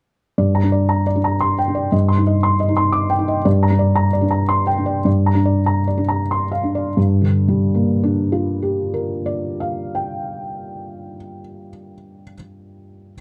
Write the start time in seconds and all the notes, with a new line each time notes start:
0.38 G2 D5
0.55 A#5
0.63 D4
0.72 D5
0.89 A#5
1.07 D5
1.16 D4
1.24 A#5
1.41 C6
1.59 G5
1.68 D4
1.75 D5
1.92 G2 D#5
2.08 C6
2.18 D#4
2.27 D#5
2.43 C6
2.60 D#5
2.68 D#4
2.77 C6
2.92 D6
3.10 G5
3.19 D#4
3.28 D#5
3.45 G2 D5
3.63 A#5
3.70 D4
3.79 D5
3.96 A#5
4.13 D5
4.21 D4
4.31 A#5
4.49 C6
4.67 G5
4.78 D4
4.86 D5
5.05 G2 D5
5.26 A#5
5.35 D4
5.45 D5
5.66 A#5
5.88 D5
5.98 D4
6.09 A#5
6.31 C6
6.52 F5
6.63 D4
6.75 D5
6.97 G2
7.22 D3
7.48 G3
7.75 A#3
8.04 D4
8.32 F4
8.62 G4
8.94 A#4
9.26 D5
9.60 F5
9.95 G5